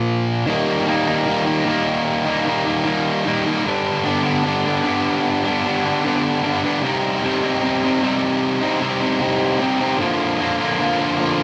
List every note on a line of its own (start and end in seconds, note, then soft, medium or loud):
0.00 0.45 A#2 medium
0.00 0.45 F3 medium
0.00 0.46 A#3 medium
0.47 0.85 D#3 medium
0.47 0.87 G3 loud
0.47 0.88 A#3 loud
0.47 0.88 D#4 loud
0.86 1.25 D#3 medium
0.86 1.09 G3 medium
0.86 1.07 A#3 medium
0.86 1.06 D#4 medium
1.07 1.27 G3 medium
1.07 1.27 A#3 medium
1.07 1.28 D#4 medium
1.26 1.65 D#3 medium
1.26 1.48 G3 medium
1.26 1.46 A#3 loud
1.26 1.44 D#4 loud
1.45 1.66 G3 medium
1.45 1.67 A#3 medium
1.45 1.68 D#4 medium
1.66 2.45 D#3 medium
1.66 2.28 G3 medium
1.66 2.26 A#3 medium
1.66 2.24 D#4 medium
2.25 2.47 G3 medium
2.25 2.48 A#3 medium
2.25 2.48 D#4 medium
2.46 2.84 D#3 medium
2.46 2.69 G3 medium
2.46 2.66 A#3 medium
2.46 2.65 D#4 loud
2.66 2.85 G3 medium
2.66 2.86 A#3 medium
2.66 2.87 D#4 medium
2.85 3.24 D#3 loud
2.85 3.26 G3 loud
2.85 3.26 A#3 loud
2.85 3.27 D#4 loud
3.26 3.63 D#3 medium
3.26 3.48 G3 medium
3.26 3.46 A#3 medium
3.26 3.44 D#4 medium
3.45 3.66 G3 medium
3.45 3.64 A#3 medium
3.45 3.63 D#4 medium
3.65 4.03 D3 loud
3.65 4.05 G3 loud
3.65 4.05 B3 loud
3.65 4.06 D4 loud
4.04 4.43 D3 medium
4.04 4.27 G3 medium
4.04 4.25 B3 medium
4.04 4.22 D4 medium
4.24 4.44 G3 medium
4.24 4.45 B3 medium
4.24 4.46 D4 medium
4.44 4.83 D3 loud
4.44 4.67 G3 loud
4.44 4.65 B3 loud
4.44 4.63 D4 loud
4.64 4.85 G3 medium
4.64 4.85 B3 medium
4.64 4.86 D4 medium
4.84 5.63 D3 medium
4.84 5.46 G3 medium
4.84 5.45 B3 loud
4.84 5.43 D4 medium
5.44 5.65 G3 medium
5.44 5.66 B3 medium
5.44 5.67 D4 medium
5.64 6.03 D3 medium
5.64 5.86 G3 loud
5.64 5.85 B3 loud
5.64 5.83 D4 loud
5.84 6.04 G3 medium
5.84 6.05 B3 medium
5.84 6.06 D4 medium
6.04 6.42 D3 loud
6.04 6.44 G3 loud
6.04 6.45 B3 loud
6.04 6.46 D4 loud
6.44 6.81 D3 medium
6.44 6.65 G3 medium
6.44 6.64 B3 medium
6.44 6.62 D4 medium
6.63 6.83 G3 medium
6.63 6.82 B3 medium
6.63 6.81 D4 medium
6.83 7.22 C3 loud
6.83 7.23 G3 loud
6.83 7.24 C4 loud
6.83 7.25 D#4 loud
7.23 7.61 C3 medium
7.23 7.45 G3 medium
7.23 7.43 C4 medium
7.23 7.41 D#4 medium
7.42 7.62 G3 medium
7.42 7.63 C4 medium
7.42 7.64 D#4 medium
7.62 8.00 C3 medium
7.62 7.84 G3 loud
7.62 7.83 C4 loud
7.62 7.81 D#4 loud
7.82 8.02 G3 medium
7.82 8.02 C4 medium
7.82 8.04 D#4 medium
8.01 8.79 C3 medium
8.01 8.63 G3 medium
8.01 8.61 C4 loud
8.01 8.60 D#4 medium
8.61 8.80 G3 medium
8.61 8.81 C4 medium
8.61 8.82 D#4 medium
8.80 9.19 C3 loud
8.80 9.02 G3 medium
8.80 9.00 C4 medium
8.80 8.99 D#4 loud
9.00 9.20 G3 medium
9.00 9.21 C4 medium
9.00 9.22 D#4 medium
9.20 9.59 C3 loud
9.20 9.60 G3 loud
9.20 9.61 C4 loud
9.20 9.62 D#4 loud
9.60 9.98 C3 medium
9.60 9.81 G3 medium
9.60 9.80 C4 medium
9.60 9.78 D#4 medium
9.79 9.99 G3 medium
9.79 9.99 C4 medium
9.79 9.98 D#4 medium
9.99 10.38 D3 loud
9.99 10.39 F3 loud
9.99 10.41 A#3 loud
9.99 10.41 F4 loud
10.39 10.77 D3 medium
10.39 10.61 F3 medium
10.39 10.60 A#3 medium
10.39 10.57 F4 medium
10.59 10.78 F3 medium
10.59 10.80 A#3 medium
10.59 10.80 F4 medium
10.79 11.17 D3 medium
10.79 11.01 F3 medium
10.79 11.00 A#3 loud
10.79 10.98 F4 loud
10.99 11.19 F3 medium
10.99 11.21 A#3 medium
10.99 11.20 F4 medium
11.18 11.43 D3 medium
11.18 11.43 F3 medium
11.18 11.43 A#3 medium
11.18 11.43 F4 medium